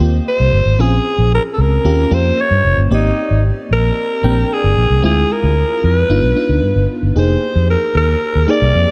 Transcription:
0.00 D#2 A#3 C4 F4 G4
0.28 C5
0.40 C2
0.53 G1
0.65 G#1
0.79 A#1 C4 C#4 F4 G#4
1.18 A#1
1.34 A#4
1.53 A4
1.58 C#2 A#4
1.84 D#2 A#3 C#4 F4 G4
2.11 F2 A#3 C#4 F4 G4 C5
2.41 C#5
2.50 G2
2.64 F1
2.77 G1
2.91 G#1 A#3 C4 D#4 G4 D5
3.30 G#1
3.71 A#1 A#4
4.23 A#1 A#3 C4 D4 G5
4.53 G#4
4.64 G1
4.77 A#1
4.90 C2
5.02 D2 G#3 C4 E4 F4 G#4
5.32 A#4
5.43 D2
5.84 F2 B4
6.09 G1 B3 D4 D#4 F4
6.22 B1
6.36 B3 D4 D#4 F4
6.49 D2
6.62 G2
6.75 G1
7.02 G1
7.16 F1 A#3 D#4 G4 G#4 C5
7.55 F2
7.70 A#4
7.95 D#2 A#4
8.35 D#2
8.48 A#3 D#4 G4 G#4 D5
8.61 C2
8.75 F2

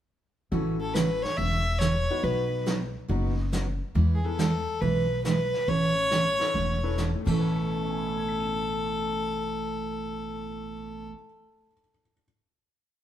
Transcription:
0.51 A1 C#3 E3 A3 C#4 E4 F#4 A4, brush sweep, kick
0.81 A4
0.94 C#3 E3 A3 C#4 F#4 B4, snare, hi-hat pedal
1.22 C#5, snare
1.37 E1 C#3 E3 A3 C#4 F#4 E5, brush sweep, kick
1.79 C#3 E3 A3 C#4 F#4 C#5, snare, hi-hat pedal
2.10 B3 D#4 F#4 B4
2.23 B1 B2 F#3 B3 D#4 F#4 B4, brush sweep, kick
2.66 B2 F#3 B3 D#4 F#4, snare, hi-hat pedal
3.08 F#1 B2 F#3 B3 D#4 F#4 B4, brush sweep, kick
3.52 B2 F#3 B3 D#4 F#4, snare, hi-hat pedal
3.95 E2 E3 G#3 B3 E4 G#4, brush sweep, kick
4.15 G#4
4.24 B3 E4 G#4 A4 B4
4.39 E3 G#3 B3 E4 G#4, snare, hi-hat pedal
4.81 B1 E3 G#3 B3 E4 G#4 B4, brush sweep, kick
5.24 E3 G#3 B3 E4 G#4 B4, snare, hi-hat pedal
5.54 snare
5.68 A1 B2 E3 A3 C#4 A4 C#5, brush sweep, kick
6.11 B2 E3 A3 C#4 A4, snare, hi-hat pedal
6.40 C#4 E4 A4 B4, snare
6.54 E1 B2 E3 A3 C#4 A4, brush sweep, kick
6.84 C#4 E4 A4 B4
6.98 B2 E3 A3 C#4 A4, snare, hi-hat pedal
7.14 A2
7.21 A3
7.25 A1 A2 B2 E3 A3 C#4 A4, kick, crash
7.33 E4
7.39 B4
7.83 E5
7.90 G#5
7.98 B5
8.07 E6
8.18 G#6
8.29 B6
8.40 E7

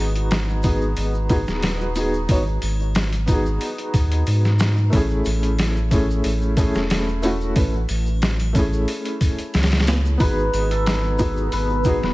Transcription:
Already playing: B3 D#4 F#4 G#4
0.00 G#1
0.15 closed hi-hat, shaker
0.31 snare, open hi-hat, shaker
0.49 shaker
0.63 B3 D#4 F#4 G#4, kick, open hi-hat, shaker
0.81 shaker
0.96 G#1, open hi-hat, shaker
1.14 shaker
1.29 B3 D#4 F#4 G#4, kick, open hi-hat, shaker
1.47 D#1, snare, shaker
1.62 snare, open hi-hat, shaker
1.81 shaker
1.95 B3 D#4 F#4 G#4, open hi-hat, shaker
2.13 shaker
2.28 G#1 B3 D#4 F#4 C#5, kick, open hi-hat, shaker
2.47 shaker
2.62 G#1, open hi-hat, triangle, shaker
2.80 shaker
2.95 snare, open hi-hat, shaker
3.13 closed hi-hat, shaker
3.26 B3 D#4, kick, open hi-hat, shaker
3.30 F#4 G#4
3.46 shaker
3.61 open hi-hat, shaker
3.78 closed hi-hat, shaker
3.94 D#2, kick, open hi-hat, shaker
4.12 closed hi-hat, shaker
4.27 G#2, open hi-hat, shaker
4.45 snare, shaker
4.59 snare, open hi-hat, shaker
4.77 shaker
4.90 A1 A3 C#4, kick, open hi-hat, shaker
4.94 E4 G#4
5.10 shaker
5.25 A1, open hi-hat, triangle, shaker
5.43 closed hi-hat, shaker
5.59 snare, open hi-hat, shaker
5.76 shaker
5.91 A3 C#4 E4 G#4, kick, open hi-hat, shaker
6.10 shaker
6.24 A1, open hi-hat, shaker
6.42 shaker
6.57 A3 C#4 E4 G#4, kick, open hi-hat, shaker
6.75 E1, snare, shaker
6.90 snare, open hi-hat, shaker
7.08 shaker
7.22 A3 C#4 E4 F#4, open hi-hat, shaker
7.41 shaker
7.55 A1 A3 C#4 E4 B4, kick, open hi-hat, shaker
7.74 shaker
7.89 A1, open hi-hat, triangle, shaker
8.06 shaker
8.22 snare, open hi-hat, shaker
8.40 closed hi-hat, triangle, shaker
8.53 A3 C#4, kick, open hi-hat, shaker
8.57 E4 G#4
8.73 shaker
8.88 open hi-hat, shaker
9.05 closed hi-hat, shaker
9.21 kick, open hi-hat, shaker
9.38 closed hi-hat, shaker
9.54 C#2, snare, open hi-hat, shaker
9.63 snare, open hi-hat
9.72 snare, open hi-hat, shaker
9.80 snare, open hi-hat
9.87 snare, open hi-hat, shaker
10.05 shaker
10.17 G#1 B3 D#4 B4, kick, open hi-hat, shaker
10.22 F#4 G#4
10.38 shaker
10.53 G#1, open hi-hat, triangle, shaker
10.71 A4, closed hi-hat, shaker
10.86 snare, open hi-hat, shaker
11.04 shaker
11.18 B3 D#4 F#4 G#4, kick, open hi-hat, shaker
11.36 shaker
11.52 G#1 B4, open hi-hat, shaker
11.70 shaker
11.84 B3 D#4 F#4 G#4, kick, open hi-hat, shaker
12.02 D#1 B4, snare, shaker

